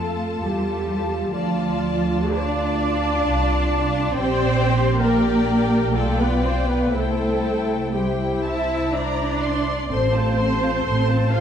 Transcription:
0.00 0.39 F2 soft
0.00 0.43 A3 medium
0.00 1.30 F4 medium
0.00 0.43 A4 medium
0.00 1.30 A4 medium
0.00 1.30 A5 soft
0.43 1.32 E2 soft
0.43 1.33 G3 medium
0.43 1.34 G4 medium
1.33 3.24 D2 medium
1.33 2.33 F3 medium
1.33 2.33 F4 medium
1.33 2.33 D5 medium
1.33 2.33 A5 medium
2.35 4.12 D4 medium
2.35 4.12 F4 medium
2.35 4.12 D5 medium
2.35 4.16 D5 medium
2.35 4.13 A5 medium
3.28 4.16 C2 medium
4.16 5.92 A#1 medium
4.16 5.02 C4 medium
4.16 5.00 G4 medium
4.16 5.00 C5 loud
4.16 5.00 D5 medium
4.16 5.01 G5 medium
5.01 5.95 A#3 medium
5.01 5.93 G4 medium
5.01 5.95 A#4 medium
5.01 5.93 D5 medium
5.01 5.93 G5 medium
5.94 6.93 B1 medium
5.94 6.19 A3 medium
5.94 6.94 F4 medium
5.94 6.19 A4 medium
5.94 6.92 D5 medium
5.94 6.92 G5 medium
6.19 6.44 B3 medium
6.19 6.44 B4 medium
6.43 6.68 C4 medium
6.43 6.68 C5 medium
6.68 6.93 B3 medium
6.68 6.93 B4 medium
6.93 9.67 C2 medium
6.93 7.94 A3 medium
6.93 7.92 E4 medium
6.93 7.94 A4 medium
6.93 7.93 C5 medium
6.93 7.92 G5 medium
7.93 8.43 G3 medium
7.93 9.68 E4 medium
7.93 8.44 G4 medium
7.93 9.68 C5 medium
7.93 8.40 G5 medium
8.43 8.93 E4 medium
8.43 8.94 E5 medium
8.43 8.93 A5 medium
8.93 9.92 D4 medium
8.93 9.92 D5 medium
8.93 9.43 A#5 medium
9.42 9.90 C6 medium
9.91 10.74 A1 medium
9.91 11.29 C4 medium
9.91 10.13 A4 medium
9.91 10.14 C5 medium
9.91 11.32 C5 loud
9.91 10.13 C6 medium
10.14 10.38 F4 soft
10.14 10.38 A4 medium
10.14 10.39 A5 soft
10.38 10.61 A4 soft
10.38 10.62 C5 medium
10.38 10.62 C6 medium
10.61 10.86 F4 soft
10.61 10.84 A4 soft
10.61 10.85 A5 medium
10.84 11.40 A1 medium
10.84 11.07 A4 medium
10.84 11.07 C5 medium
10.84 11.07 C6 medium
11.08 11.32 F4 soft
11.08 11.30 A4 soft
11.08 11.32 A5 medium
11.31 11.40 F4 medium
11.31 11.40 A4 medium
11.31 11.40 C5 medium
11.31 11.40 F5 medium
11.31 11.40 C6 medium

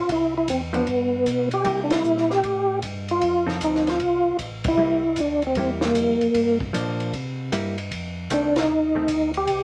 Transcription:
0.00 0.10 F4 medium
0.09 0.47 C2 medium
0.09 0.34 E4 medium
0.09 kick soft
0.09 ride medium
0.38 0.48 E4 medium
0.48 0.86 E2 medium
0.48 0.61 C4 medium
0.48 kick soft
0.48 hi-hat pedal medium
0.48 ride medium
0.73 0.85 F3 medium
0.73 0.85 B3 medium
0.73 1.49 B3 medium
0.73 0.86 D4 medium
0.73 ride soft
0.87 1.25 G2 medium
0.87 kick soft
0.87 ride medium
1.26 1.64 B2 medium
1.26 kick soft
1.26 hi-hat pedal medium
1.26 ride medium
1.51 1.81 G4 loud
1.51 ride soft
1.65 2.03 C3 medium
1.65 2.25 G3 medium
1.65 2.25 A#3 medium
1.65 2.25 E4 medium
1.65 kick soft
1.65 ride medium
1.84 1.92 D4 medium
1.90 2.32 E4 loud
1.90 snare medium
1.90 ride medium
2.04 2.42 A#2 medium
2.04 hi-hat pedal medium
2.17 snare soft
2.30 2.79 G4 loud
2.30 snare soft
2.44 2.82 A2 medium
2.44 kick soft
2.44 ride soft
2.82 3.21 G2 medium
2.82 kick soft
2.82 hi-hat pedal medium
2.82 ride medium
3.08 3.46 F4 medium
3.08 ride soft
3.21 3.60 F2 medium
3.21 kick soft
3.21 ride medium
3.47 3.97 F3 medium
3.47 3.97 C4 medium
3.47 3.97 D#4 medium
3.47 3.97 A4 medium
3.47 snare soft
3.61 3.99 D2 medium
3.61 3.89 D#4 medium
3.61 kick soft
3.61 hi-hat pedal medium
3.61 ride medium
3.75 snare soft
3.87 4.37 F4 medium
3.87 snare soft
3.87 ride soft
4.00 4.24 C2 medium
4.00 kick soft
4.00 ride soft
4.25 4.32 C2 soft
4.39 4.77 A1 medium
4.39 kick soft
4.39 hi-hat pedal medium
4.39 ride medium
4.64 5.21 E4 loud
4.64 kick medium
4.64 ride medium
4.78 5.16 C2 medium
4.78 5.01 G3 medium
4.78 5.02 A#3 medium
4.78 5.02 E4 medium
5.16 5.55 D2 medium
5.16 kick soft
5.16 hi-hat pedal medium
5.16 ride medium
5.20 5.43 D4 medium
5.42 ride soft
5.47 5.58 C4 medium
5.55 5.94 E2 medium
5.55 6.17 G3 medium
5.55 6.17 A#3 soft
5.55 6.17 E4 medium
5.55 kick soft
5.55 ride medium
5.60 5.71 C4 medium
5.81 snare medium
5.85 6.58 A#3 medium
5.95 6.20 F2 medium
5.95 kick soft
5.95 hi-hat pedal medium
5.95 ride medium
6.21 6.28 F2 soft
6.21 ride soft
6.34 6.73 G2 medium
6.34 kick soft
6.34 ride medium
6.60 kick medium
6.73 7.12 A#2 medium
6.73 7.13 F3 medium
6.73 7.13 A#3 medium
6.73 7.13 D4 medium
6.73 kick soft
6.73 hi-hat pedal medium
6.73 ride medium
7.00 ride soft
7.13 7.51 C3 medium
7.13 kick soft
7.13 ride medium
7.52 7.90 G2 medium
7.52 7.75 G3 medium
7.52 7.76 A#3 medium
7.52 7.76 E4 medium
7.52 kick soft
7.52 hi-hat pedal medium
7.52 ride medium
7.78 ride soft
7.91 8.29 F2 medium
7.91 kick soft
7.91 ride medium
8.30 8.68 C2 medium
8.30 8.54 D#3 medium
8.30 8.54 A3 soft
8.30 8.54 C4 medium
8.30 8.59 D4 medium
8.30 kick soft
8.30 hi-hat pedal medium
8.30 ride medium
8.56 9.31 D#4 loud
8.56 snare medium
8.56 ride medium
8.68 9.07 D#2 medium
8.95 9.07 D#3 medium
8.95 9.08 A3 medium
8.95 9.08 C4 medium
9.08 9.46 D2 medium
9.08 kick soft
9.08 hi-hat pedal medium
9.08 ride medium
9.34 9.63 G4 loud
9.34 ride soft
9.47 9.63 C2 medium
9.47 kick soft
9.47 ride medium

